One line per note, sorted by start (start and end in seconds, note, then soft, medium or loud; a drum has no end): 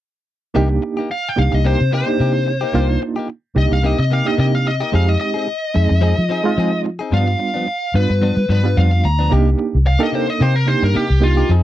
0.54 0.78 C2 medium
0.54 0.70 C3 medium
0.54 1.08 A#3 medium
0.54 0.70 A#3 medium
0.54 1.08 D4 medium
0.54 1.09 D#4 medium
0.54 0.69 D#4 medium
0.54 1.09 G4 medium
0.54 0.68 G4 medium
0.70 muted clean electric guitar stroke soft
0.82 muted clean electric guitar stroke soft
0.97 1.09 A#3 soft
0.97 1.10 D#4 soft
0.97 1.10 G4 soft
1.10 1.29 F5 medium
1.10 muted clean electric guitar stroke soft
1.29 1.39 G5 medium
1.36 1.50 C2 medium
1.36 1.82 A#3 medium
1.36 1.82 D4 medium
1.36 1.82 D#4 medium
1.36 1.83 G4 medium
1.36 1.54 F5 medium
1.36 muted clean electric guitar stroke soft
1.52 1.75 C2 medium
1.52 1.66 D#5 medium
1.52 muted clean electric guitar stroke soft
1.65 1.80 C3 medium
1.65 1.80 A#3 medium
1.65 1.80 D#4 medium
1.65 1.79 G4 medium
1.65 1.92 C5 medium
1.81 2.02 C3 medium
1.91 2.10 C3 soft
1.91 2.10 A#3 medium
1.91 2.11 D#4 medium
1.91 2.11 G4 medium
1.91 2.99 C5 medium
2.06 2.50 A#3 medium
2.06 2.50 D4 medium
2.06 2.50 D#4 medium
2.06 2.51 G4 medium
2.19 2.34 C3 soft
2.19 2.64 C3 medium
2.19 2.34 A#3 medium
2.19 2.33 D#4 medium
2.19 2.33 G4 medium
2.46 muted clean electric guitar stroke soft
2.61 2.73 A#3 soft
2.61 2.74 D#4 soft
2.61 2.74 G4 medium
2.73 2.96 C2 medium
2.73 2.89 C3 medium
2.73 3.27 A#3 medium
2.73 2.89 A#3 medium
2.73 3.27 D4 medium
2.73 3.28 D#4 medium
2.73 2.89 D#4 medium
2.73 3.28 F4 medium
2.73 2.88 G4 medium
2.89 muted clean electric guitar stroke soft
3.01 muted clean electric guitar stroke soft
3.16 3.28 A#3 soft
3.16 3.28 D#4 soft
3.16 3.29 G4 medium
3.29 muted clean electric guitar stroke soft
3.55 3.68 C2 medium
3.55 4.01 A#3 medium
3.55 4.01 D4 medium
3.55 4.02 D#4 medium
3.55 4.02 G4 medium
3.55 3.73 D#5 medium
3.55 muted clean electric guitar stroke soft
3.71 3.93 C2 medium
3.71 3.86 F5 medium
3.71 muted clean electric guitar stroke soft
3.83 3.99 C3 medium
3.83 3.99 A#3 medium
3.83 3.98 D#4 medium
3.83 3.97 G4 medium
3.83 3.99 D#5 medium
3.99 4.21 C3 medium
3.99 4.13 D#5 medium
3.99 muted clean electric guitar stroke soft
4.10 4.28 C3 medium
4.10 4.29 A#3 medium
4.10 4.30 D#4 medium
4.10 4.30 G4 medium
4.10 4.27 F5 medium
4.25 4.69 A#3 medium
4.25 4.69 D4 medium
4.25 4.69 D#4 medium
4.25 4.69 G4 medium
4.25 4.39 D#5 medium
4.37 4.53 C3 medium
4.37 4.82 C3 medium
4.37 4.54 A#3 medium
4.37 4.53 D#4 medium
4.37 4.52 G4 medium
4.37 4.55 D#5 medium
4.53 4.66 F5 medium
4.53 muted clean electric guitar stroke soft
4.66 4.80 D#5 medium
4.66 muted clean electric guitar stroke soft
4.80 4.93 A#3 soft
4.80 4.93 D#4 soft
4.80 4.93 G4 soft
4.80 4.95 D#5 medium
4.92 5.15 F2 medium
4.92 5.08 F3 medium
4.92 5.46 G#3 medium
4.92 5.46 C4 medium
4.92 5.08 C4 medium
4.92 5.46 D#4 medium
4.92 5.07 D#4 medium
4.92 5.47 G4 medium
4.92 5.07 G#4 medium
4.92 5.09 F5 medium
5.08 5.20 D#5 medium
5.08 muted clean electric guitar stroke soft
5.20 6.81 D#5 medium
5.20 muted clean electric guitar stroke soft
5.34 5.47 C4 soft
5.34 5.47 D#4 soft
5.34 5.47 G#4 soft
5.47 muted clean electric guitar stroke soft
5.74 5.88 F2 medium
5.74 6.20 G#3 medium
5.74 6.20 C4 medium
5.74 6.20 D#4 medium
5.74 6.21 G#4 medium
5.74 muted clean electric guitar stroke soft
5.89 6.12 F2 medium
5.89 muted clean electric guitar stroke soft
6.01 6.17 F3 medium
6.01 6.17 C4 medium
6.01 6.17 D#4 medium
6.01 6.16 G#4 medium
6.17 6.40 F3 medium
6.17 muted clean electric guitar stroke soft
6.29 6.47 F3 medium
6.29 6.48 C4 medium
6.29 6.48 D#4 medium
6.29 6.49 G#4 medium
6.44 6.87 G#3 medium
6.44 6.88 C4 medium
6.44 6.88 D#4 medium
6.44 6.88 F4 medium
6.57 6.72 F3 medium
6.57 7.01 F3 medium
6.57 6.72 C4 medium
6.57 6.72 D#4 medium
6.57 6.71 G#4 medium
6.72 muted clean electric guitar stroke soft
6.84 muted clean electric guitar stroke soft
6.99 7.12 C4 soft
6.99 7.13 D#4 soft
6.99 7.12 G#4 soft
7.11 7.27 G2 medium
7.11 7.34 G2 medium
7.11 7.27 F3 medium
7.11 7.65 G3 medium
7.11 7.65 B3 medium
7.11 7.26 B3 medium
7.11 7.66 D4 medium
7.11 7.25 D4 medium
7.11 7.66 F4 medium
7.11 7.93 F5 medium
7.27 muted clean electric guitar stroke soft
7.39 muted clean electric guitar stroke soft
7.54 7.66 F3 soft
7.54 7.67 B3 soft
7.54 7.67 D4 soft
7.67 muted clean electric guitar stroke soft
7.94 8.06 G2 medium
7.94 8.39 G3 medium
7.94 8.39 B3 medium
7.94 8.40 D4 medium
7.94 8.40 F4 medium
7.94 8.48 B4 medium
7.94 muted clean electric guitar stroke soft
8.10 8.31 G2 medium
8.10 muted clean electric guitar stroke soft
8.22 8.37 G2 medium
8.22 8.37 F3 medium
8.22 8.37 B3 medium
8.22 8.36 D4 medium
8.37 8.47 G3 medium
8.37 muted clean electric guitar stroke soft
8.49 8.66 G2 soft
8.49 8.74 G2 medium
8.49 8.67 F3 medium
8.49 8.67 B3 medium
8.49 8.68 D4 medium
8.49 8.76 B4 medium
8.64 9.07 G3 medium
8.64 9.07 B3 medium
8.64 9.07 D4 medium
8.64 9.08 F4 medium
8.76 9.01 F2 medium
8.76 8.92 G2 soft
8.76 8.92 F3 medium
8.76 8.92 B3 medium
8.76 8.91 D4 medium
8.76 9.03 F5 medium
8.92 muted clean electric guitar stroke soft
9.04 9.29 D2 medium
9.04 9.31 A#5 medium
9.04 muted clean electric guitar stroke soft
9.19 9.32 F3 soft
9.19 9.31 B3 soft
9.19 9.31 D4 soft
9.30 9.53 C2 medium
9.30 9.48 C3 medium
9.30 9.76 A#3 medium
9.30 9.49 A#3 medium
9.30 9.76 D4 medium
9.30 9.76 D#4 medium
9.30 9.49 D#4 medium
9.30 9.76 G4 medium
9.30 9.49 G4 medium
9.58 muted clean electric guitar stroke soft
9.75 9.96 C2 medium
9.86 10.01 F5 medium
9.86 muted clean electric guitar stroke soft
9.99 10.43 A#3 medium
9.99 10.12 A#3 soft
9.99 10.43 D4 medium
9.99 10.43 D#4 medium
9.99 10.13 D#4 soft
9.99 10.13 G4 medium
9.99 10.43 A4 medium
10.03 10.15 D#5 medium
10.12 10.28 C3 medium
10.12 10.28 A#3 medium
10.12 10.27 D#4 medium
10.12 10.27 G4 medium
10.12 10.30 C5 medium
10.28 10.42 D#5 medium
10.28 muted clean electric guitar stroke soft
10.40 10.55 C3 medium
10.40 10.74 C3 medium
10.40 10.56 A#3 medium
10.40 10.55 D#4 medium
10.40 10.54 G4 medium
10.40 10.56 C5 medium
10.56 10.68 A#4 medium
10.66 11.03 A#3 medium
10.66 11.03 D4 medium
10.66 11.03 D#4 medium
10.66 11.04 G4 medium
10.66 10.82 C5 medium
10.66 muted clean electric guitar stroke soft
10.83 10.92 G2 medium
10.83 10.96 A#4 medium
10.83 muted clean electric guitar stroke soft
10.94 11.10 C3 medium
10.94 11.10 A#3 medium
10.94 11.09 D#4 medium
10.94 11.22 G4 medium
10.94 11.09 G4 medium
10.94 muted fingered electric bass stroke soft
11.10 11.42 C2 medium
11.10 muted clean electric guitar stroke soft
11.20 11.48 A#3 medium
11.20 11.49 D4 medium
11.20 11.49 D#4 medium
11.20 11.49 F4 medium
11.20 11.50 G4 medium
11.20 muted clean electric guitar stroke soft
11.37 11.50 A#3 soft
11.37 11.50 D#4 soft
11.37 11.49 G4 soft
11.49 11.63 F2 medium
11.49 11.63 F3 medium
11.49 11.63 C4 medium
11.49 11.63 D#4 medium
11.49 11.63 G#4 medium